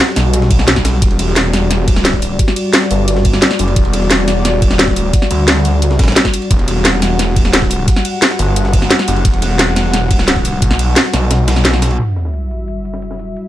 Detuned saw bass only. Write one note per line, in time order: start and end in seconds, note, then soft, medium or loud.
0.16 1.01 B1 loud
1.02 2.38 E1 loud
2.91 3.41 G1 medium
3.59 3.75 F#1 loud
3.76 4.72 E1 loud
4.72 4.99 D#1 loud
4.99 5.12 D1 loud
5.31 6.15 D2 loud
6.51 7.49 E1 loud
7.49 7.71 D1 loud
7.71 7.86 C1 loud
8.39 8.89 G1 loud
9.08 9.24 F#1 loud
9.25 10.61 E1 loud
10.62 10.95 B1 loud
11.14 11.98 B1 medium